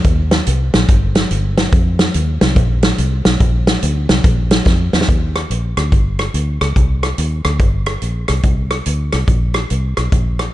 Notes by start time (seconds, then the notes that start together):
0.04 D#2, kick, closed hi-hat
0.31 snare, closed hi-hat
0.47 C2, closed hi-hat
0.74 A#1, snare, closed hi-hat
0.89 G1, kick, closed hi-hat
1.15 snare, closed hi-hat
1.31 G1, closed hi-hat
1.58 snare, closed hi-hat
1.73 F2, kick, closed hi-hat
1.99 snare, closed hi-hat
2.14 D#2, closed hi-hat
2.41 C2, snare, closed hi-hat
2.56 A#1, kick, closed hi-hat
2.83 snare, closed hi-hat
2.98 C2, closed hi-hat
3.25 B1, snare, closed hi-hat
3.40 A#1, kick, closed hi-hat
3.67 snare, closed hi-hat
3.83 D2, closed hi-hat
4.09 C2, snare, closed hi-hat
4.24 A#1, kick, closed hi-hat
4.51 snare, closed hi-hat
4.66 F2, kick, snare
4.93 E2, snare
5.01 snare
5.09 D#2, kick, closed hi-hat
5.36 cross-stick, closed hi-hat
5.50 A#1, closed hi-hat
5.77 D2, cross-stick, closed hi-hat
5.92 G1, kick, closed hi-hat
6.19 cross-stick, closed hi-hat
6.34 D2, closed hi-hat
6.61 C#2, cross-stick, closed hi-hat
6.76 C2, kick, closed hi-hat
7.03 cross-stick, closed hi-hat
7.18 D#2, closed hi-hat
7.45 D2, cross-stick, closed hi-hat
7.60 G1, kick, closed hi-hat
7.86 cross-stick, closed hi-hat
8.02 A#1, closed hi-hat
8.28 C2, cross-stick, closed hi-hat
8.43 C2, kick, closed hi-hat
8.71 cross-stick, closed hi-hat
8.86 D2, closed hi-hat
9.12 C2, cross-stick, closed hi-hat
9.28 A#1, kick, closed hi-hat
9.54 cross-stick, closed hi-hat
9.70 C2, closed hi-hat
9.97 B1, cross-stick, closed hi-hat
10.12 A#1, kick, closed hi-hat
10.39 cross-stick, closed hi-hat